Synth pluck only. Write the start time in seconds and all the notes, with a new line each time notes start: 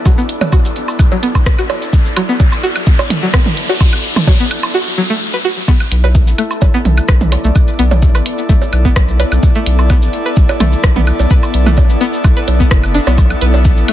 0.06 F#3
0.18 B3
0.52 F#4
1.12 F#3
1.23 B3
1.59 F#4
2.17 F#3
2.29 B3
2.63 F#4
3.23 F#3
3.34 B3
3.69 F#4
4.27 F#3
4.40 B3
4.74 F#4
4.98 F#3
5.10 A3
5.34 B4
5.45 F#4
5.68 B3
6.04 B4
6.38 A3
6.74 B3
7.09 B4
7.45 A3
7.79 B3
8.15 B4
8.49 A3
8.85 B3
9.20 B4
9.55 A3
9.90 B3
10.26 B4
10.60 A3
10.96 B3
11.31 B4
11.66 A3
12.01 B3
12.37 B4
12.60 B3
12.95 D4
13.07 B3
13.42 B4
13.88 A3